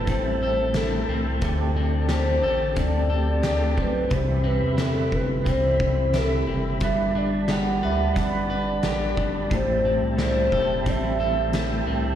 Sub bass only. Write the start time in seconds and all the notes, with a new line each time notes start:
0.07 A1
1.08 C2
1.42 D2
2.44 A1
2.77 D2
3.44 D2
3.78 B1
4.11 C2
4.62 E2
5.13 G1
5.46 C2
6.48 F#1
6.81 G1
7.82 D2
8.16 G1
8.83 A1
9.17 G1
9.51 A1
10.02 C2
10.52 E1
10.86 A1
11.86 C2